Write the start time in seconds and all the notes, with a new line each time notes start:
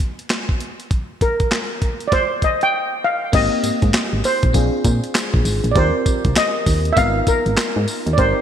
0.00 kick, closed hi-hat
0.19 closed hi-hat
0.30 snare, clap, closed hi-hat
0.49 kick
0.60 closed hi-hat
0.80 closed hi-hat
0.91 kick, closed hi-hat
1.21 A#4, kick, closed hi-hat
1.40 kick, closed hi-hat
1.51 snare, clap, closed hi-hat
1.82 kick, closed hi-hat
2.00 closed hi-hat
2.08 D5
2.12 C5, kick, snare, closed hi-hat
2.42 D#5, kick, closed hi-hat
2.61 G5, closed hi-hat
3.04 F5
3.32 G#1 A#3 C4 D#4 G4 D#5, kick, closed hi-hat, crash
3.63 G#2, closed hi-hat, tambourine
3.82 G#2, kick, closed hi-hat
3.94 snare, clap, closed hi-hat, tambourine
4.13 G#1
4.24 C5, open hi-hat, tambourine
4.43 A#1, kick, closed hi-hat
4.53 A#1 C4 D4 F4 G#4, kick, closed hi-hat, tambourine
4.84 A#2, kick, closed hi-hat, tambourine
5.04 closed hi-hat
5.15 snare, clap, closed hi-hat, tambourine
5.34 A#1, kick
5.45 G#1, open hi-hat, tambourine
5.64 A#1, closed hi-hat
5.71 C4 F4 D5
5.75 D#2 G4 A#4 C5, kick, closed hi-hat
6.06 kick, closed hi-hat, tambourine
6.25 C2, kick, closed hi-hat
6.36 D#5, snare, clap, closed hi-hat, tambourine
6.66 D#2, kick, open hi-hat, tambourine
6.85 closed hi-hat
6.93 B3 D#4 E5
6.97 G#1 F4 A#4 F5, kick, closed hi-hat, tambourine
7.27 A#4, kick, closed hi-hat, tambourine
7.46 G#1, closed hi-hat
7.57 snare, clap, closed hi-hat, tambourine
7.76 G#2
7.88 open hi-hat, tambourine
8.06 D#2, closed hi-hat
8.13 C4 D5
8.18 G#1 D#4 G4 A#4 C5, kick, closed hi-hat